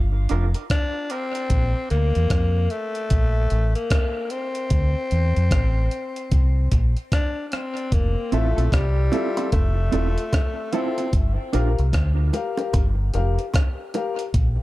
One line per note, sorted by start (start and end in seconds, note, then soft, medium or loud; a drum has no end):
0.00 0.26 G1 medium
0.29 0.53 F1 medium
0.29 0.44 D4 medium
0.29 0.44 F4 medium
0.29 0.45 A#4 medium
0.29 closed hi-hat medium
0.54 0.62 D4 soft
0.54 0.62 F4 medium
0.54 0.62 A#4 medium
0.54 closed hi-hat medium
0.70 1.13 D4 loud
0.70 kick loud
0.70 cross-stick loud
0.70 closed hi-hat medium
1.10 1.90 C4 loud
1.10 1.24 D4 medium
1.10 1.25 F4 medium
1.10 1.25 A#4 medium
1.10 closed hi-hat medium
1.35 1.43 D4 medium
1.35 1.42 F4 medium
1.35 1.42 A#4 medium
1.35 closed hi-hat medium
1.50 1.73 A#1 loud
1.50 kick loud
1.50 closed hi-hat loud
1.90 2.13 D2 medium
1.90 2.04 A#3 medium
1.90 2.72 A#3 loud
1.90 2.05 D4 medium
1.90 2.05 A4 medium
1.90 closed hi-hat medium
2.15 2.29 E2 medium
2.15 closed hi-hat soft
2.30 2.67 F2 medium
2.30 kick loud
2.30 cross-stick loud
2.30 closed hi-hat medium
2.70 3.75 A3 medium
2.70 closed hi-hat medium
2.95 closed hi-hat medium
3.10 3.47 A#1 medium
3.10 kick loud
3.10 closed hi-hat medium
3.50 3.74 A1 medium
3.50 closed hi-hat medium
3.75 4.33 A#3 medium
3.75 closed hi-hat medium
3.90 kick loud
3.90 cross-stick loud
3.90 closed hi-hat medium
4.30 6.72 C4 medium
4.30 closed hi-hat medium
4.55 closed hi-hat medium
4.70 4.94 D2 loud
4.70 kick loud
4.70 closed hi-hat loud
5.11 5.34 E2 medium
5.11 closed hi-hat medium
5.37 5.50 F2 medium
5.37 closed hi-hat soft
5.51 5.88 A1 medium
5.51 kick loud
5.51 cross-stick loud
5.51 closed hi-hat medium
5.91 closed hi-hat medium
6.16 closed hi-hat medium
6.32 6.68 C2 medium
6.32 kick loud
6.32 closed hi-hat medium
6.72 6.94 A#1 medium
6.72 kick medium
6.72 closed hi-hat medium
6.97 closed hi-hat soft
7.12 7.48 D4 medium
7.12 kick loud
7.12 cross-stick loud
7.12 closed hi-hat medium
7.48 7.54 D4 medium
7.48 closed hi-hat medium
7.53 7.95 C4 medium
7.53 cross-stick medium
7.77 closed hi-hat soft
7.92 8.15 F1 loud
7.92 8.34 A#3 medium
7.92 kick loud
7.92 closed hi-hat loud
8.32 8.55 A1 medium
8.32 8.74 A3 medium
8.32 8.46 C4 medium
8.32 8.47 E4 medium
8.32 8.58 F4 medium
8.32 8.59 A4 medium
8.32 8.47 A4 medium
8.32 8.59 E5 loud
8.32 closed hi-hat medium
8.56 8.71 A#1 medium
8.56 8.64 C4 soft
8.56 8.64 E4 medium
8.56 8.63 A4 medium
8.56 closed hi-hat soft
8.72 9.09 C2 medium
8.72 9.52 G3 medium
8.72 kick loud
8.72 cross-stick loud
8.72 closed hi-hat medium
9.12 9.26 C4 medium
9.12 9.27 E4 medium
9.12 9.36 F4 medium
9.12 9.37 A4 medium
9.12 9.27 A4 medium
9.12 9.38 E5 loud
9.12 closed hi-hat medium
9.12 low bongo medium
9.37 9.45 C4 medium
9.37 9.44 E4 medium
9.37 9.55 F4 medium
9.37 9.44 A4 medium
9.37 9.55 A4 medium
9.37 9.55 E5 medium
9.37 closed hi-hat medium
9.37 high bongo medium
9.52 9.89 F1 medium
9.52 10.75 A3 medium
9.52 kick loud
9.52 closed hi-hat medium
9.52 high bongo medium
9.92 10.15 E1 medium
9.92 10.06 C4 medium
9.92 10.07 E4 medium
9.92 10.19 F4 medium
9.92 10.07 A4 medium
9.92 10.17 A4 medium
9.92 10.17 E5 loud
9.92 closed hi-hat medium
10.18 10.24 A4 soft
10.18 10.24 E5 soft
10.18 closed hi-hat medium
10.33 kick loud
10.33 cross-stick loud
10.33 closed hi-hat medium
10.33 high bongo medium
10.73 10.87 C4 medium
10.73 11.13 C4 medium
10.73 10.87 E4 medium
10.73 10.99 F4 medium
10.73 10.99 A4 medium
10.73 10.88 A4 medium
10.73 10.99 E5 loud
10.73 closed hi-hat medium
10.73 low bongo medium
10.98 11.06 C4 medium
10.98 11.05 E4 medium
10.98 11.04 A4 medium
10.98 closed hi-hat medium
11.13 11.36 G1 loud
11.13 kick loud
11.13 closed hi-hat loud
11.53 11.76 A#1 medium
11.53 11.67 D4 medium
11.53 11.67 F4 medium
11.53 11.79 G4 medium
11.53 11.79 A#4 medium
11.53 11.68 A#4 medium
11.53 11.80 F5 loud
11.53 closed hi-hat medium
11.79 11.92 C2 medium
11.79 closed hi-hat soft
11.93 12.30 D2 loud
11.93 kick loud
11.93 cross-stick loud
11.93 closed hi-hat medium
12.33 12.57 G4 medium
12.33 12.57 A#4 medium
12.33 12.58 F5 loud
12.33 closed hi-hat medium
12.33 low bongo medium
12.57 12.76 G4 medium
12.57 12.76 A#4 medium
12.57 12.76 F5 medium
12.57 closed hi-hat medium
12.57 high bongo medium
12.73 13.10 G1 medium
12.73 kick loud
12.73 closed hi-hat medium
12.73 high bongo medium
13.13 13.37 F1 medium
13.13 13.40 G4 medium
13.13 13.38 A#4 medium
13.13 13.38 F5 loud
13.13 closed hi-hat medium
13.39 13.45 A#4 soft
13.39 13.45 F5 soft
13.39 closed hi-hat soft
13.54 kick loud
13.54 cross-stick loud
13.54 closed hi-hat medium
13.54 high bongo medium
13.94 14.20 G4 medium
13.94 14.20 A#4 medium
13.94 14.21 F5 loud
13.94 closed hi-hat medium
13.94 low bongo medium
14.19 closed hi-hat soft
14.34 14.57 A#1 loud
14.34 kick loud
14.34 closed hi-hat medium